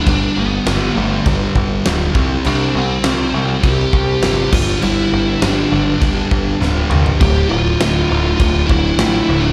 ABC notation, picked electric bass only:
X:1
M:4/4
L:1/8
Q:1/4=101
K:Gdor
V:1 name="Picked electric bass" clef=bass
G,,, G,,, G,,, G,,, G,,, G,,, D,,, C,, | C,, C,, C,, C,, C,, C,, G,,, G,,, | G,,, G,,, G,,, G,,, G,,, G,,, D,,, C,, | D,,, D,,, D,,, D,,, D,,, D,,, A,,, D,,, |]